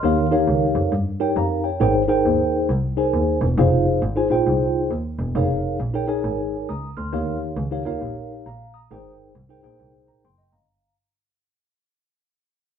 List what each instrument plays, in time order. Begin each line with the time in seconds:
Already playing: tine electric piano C6 F6
0.03 double bass D#2, tine electric piano D#3 D#4 G4 A#4 C#5 F5
0.31 tine electric piano D#4 G4 A#4 C#5 F5
0.48 double bass C#2
0.75 double bass F2
0.92 double bass G2
1.20 tine electric piano D#4 G4 A#4 C#5 G5
1.36 double bass F2, tine electric piano F5 A#5
1.64 tine electric piano C#5 G5
1.80 double bass G#1, tine electric piano G#2 D#4 G#4 A#4 C5 G5
2.08 tine electric piano D#4 G#4 A#4 C5 G5
2.26 double bass D#2
2.69 double bass C2
2.97 tine electric piano D#4 G#4 A#4 C5 G#5
3.14 double bass D#2
3.41 double bass E1
3.58 double bass F1, tine electric piano D#4 F4 G#4 C5 F5
4.02 double bass G#1
4.16 tine electric piano D#4 F4 G#4 C5 G#5
4.30 double bass A#1, tine electric piano D#4 F4 G#4 C5 G5
4.47 double bass C2
4.91 double bass D#2
5.19 double bass E1
5.35 double bass F1, tine electric piano D#4 G#4 A#4 C#5 F5
5.80 double bass A#1
5.94 tine electric piano D#4 G#4 A#4 C#5 G5
6.07 tine electric piano D#4 G#4 A#4 C#5 G#5
6.24 double bass G#1
6.69 double bass C#2, tine electric piano A#5 D#6
6.97 double bass D2, tine electric piano C6 F6
7.12 double bass D#2, tine electric piano D#3 D#4 G4 A#4 C#5 F5
7.57 double bass C#2
7.71 tine electric piano D#4 G4 A#4 C#5 F5
7.85 double bass D#2, tine electric piano D#4 F4 A#4 C#5 F5
7.91 tine electric piano G4
8.02 double bass A#1
8.46 double bass A#1, tine electric piano F5 A#5
8.74 tine electric piano A#5 D#6
8.91 double bass G#1, tine electric piano G#2 D#4 G#4 A#4 C5 G5
9.35 double bass C2
9.49 tine electric piano D#4 G#4 A#4 C5 G5
9.63 double bass A#1, tine electric piano D#4 G#4 A#4 C5 G5
9.80 double bass C2
10.08 double bass A#1, tine electric piano A#5
10.25 double bass F#1, tine electric piano G5 C6
10.38 tine electric piano D#5
10.52 double bass G1, tine electric piano F5 A#5